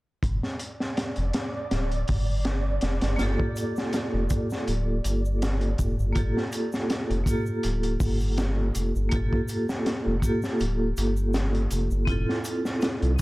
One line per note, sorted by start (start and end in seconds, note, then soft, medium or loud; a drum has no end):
0.23 0.41 G1 medium
0.23 6.17 D5 medium
0.23 kick medium
0.23 closed hi-hat medium
0.43 snare soft
0.59 closed hi-hat medium
0.80 snare soft
0.97 snare medium
0.97 closed hi-hat medium
1.16 1.32 F1 medium
1.16 closed hi-hat soft
1.33 snare loud
1.33 closed hi-hat medium
1.71 2.04 D1 medium
1.71 snare medium
1.71 closed hi-hat medium
1.91 closed hi-hat soft
2.08 2.80 G1 medium
2.08 kick medium
2.08 open hi-hat medium
2.45 snare loud
2.45 closed hi-hat medium
2.81 3.00 F1 medium
2.81 snare medium
2.81 closed hi-hat medium
3.01 3.17 G1 loud
3.01 snare loud
3.01 closed hi-hat medium
3.16 3.37 G1 medium
3.16 6.07 A#3 medium
3.16 6.08 F4 medium
3.16 snare medium
3.16 closed hi-hat medium
3.16 shaker soft
3.21 6.09 G4 medium
3.21 6.11 A4 medium
3.40 kick medium
3.56 closed hi-hat medium
3.56 shaker medium
3.76 snare soft
3.76 shaker soft
3.93 snare medium
3.93 closed hi-hat medium
3.93 shaker soft
4.14 4.29 F1 medium
4.30 kick medium
4.30 closed hi-hat medium
4.30 shaker medium
4.50 snare soft
4.50 shaker soft
4.68 5.01 D1 medium
4.68 closed hi-hat medium
4.68 shaker soft
5.04 5.76 G1 medium
5.04 closed hi-hat medium
5.04 shaker medium
5.25 shaker soft
5.42 snare medium
5.42 closed hi-hat medium
5.42 shaker soft
5.61 closed hi-hat soft
5.78 5.97 F1 medium
5.78 kick medium
5.78 closed hi-hat soft
5.78 shaker medium
5.99 6.14 G1 medium
5.99 shaker soft
6.13 6.34 G1 loud
6.13 7.21 A#3 medium
6.13 7.22 F4 medium
6.13 kick medium
6.13 closed hi-hat medium
6.13 shaker soft
6.17 7.23 G4 medium
6.17 7.24 A4 medium
6.37 snare soft
6.52 closed hi-hat medium
6.52 shaker medium
6.72 snare soft
6.72 shaker soft
6.90 snare loud
6.90 closed hi-hat medium
6.90 shaker soft
7.11 7.25 F1 medium
7.11 closed hi-hat soft
7.24 9.06 A#3 medium
7.24 9.07 F4 medium
7.24 kick medium
7.24 closed hi-hat medium
7.24 shaker medium
7.28 9.09 G4 medium
7.28 9.10 A4 medium
7.46 shaker soft
7.63 7.97 D1 medium
7.63 closed hi-hat medium
7.63 shaker soft
7.83 closed hi-hat soft
8.00 8.71 G1 medium
8.00 kick medium
8.00 open hi-hat medium
8.00 shaker medium
8.20 shaker soft
8.37 snare loud
8.37 closed hi-hat medium
8.37 shaker soft
8.75 8.93 F1 medium
8.75 closed hi-hat medium
8.75 shaker medium
8.96 9.10 G1 loud
8.96 shaker soft
9.09 9.30 G1 medium
9.09 10.17 A#3 medium
9.09 10.19 F4 medium
9.09 kick loud
9.09 closed hi-hat medium
9.09 shaker soft
9.13 10.20 G4 medium
9.13 10.21 A4 loud
9.33 kick loud
9.48 closed hi-hat medium
9.48 shaker medium
9.69 snare medium
9.69 shaker soft
9.86 snare loud
9.86 closed hi-hat medium
9.86 shaker soft
10.07 10.21 F1 loud
10.20 12.02 A#3 medium
10.20 12.04 F4 medium
10.20 kick medium
10.20 closed hi-hat medium
10.20 shaker loud
10.24 12.05 G4 medium
10.24 12.06 A4 medium
10.42 snare soft
10.42 shaker soft
10.59 10.93 D1 medium
10.59 closed hi-hat medium
10.59 shaker soft
10.97 11.68 G1 medium
10.97 closed hi-hat medium
10.97 shaker medium
11.17 shaker medium
11.33 snare loud
11.33 closed hi-hat medium
11.33 shaker soft
11.55 closed hi-hat soft
11.71 11.89 F1 medium
11.71 closed hi-hat medium
11.71 shaker medium
11.91 12.06 G1 loud
11.91 shaker soft
12.05 12.26 F1 medium
12.05 13.14 C4 medium
12.05 13.15 E4 medium
12.05 kick loud
12.05 closed hi-hat medium
12.05 shaker soft
12.09 13.16 F4 medium
12.09 13.17 A4 medium
12.29 snare soft
12.44 closed hi-hat medium
12.44 shaker medium
12.65 snare soft
12.65 shaker medium
12.81 snare loud
12.81 closed hi-hat medium
12.81 shaker soft
13.02 13.17 C2 loud
13.02 closed hi-hat soft
13.16 13.22 C4 medium
13.16 13.22 E4 medium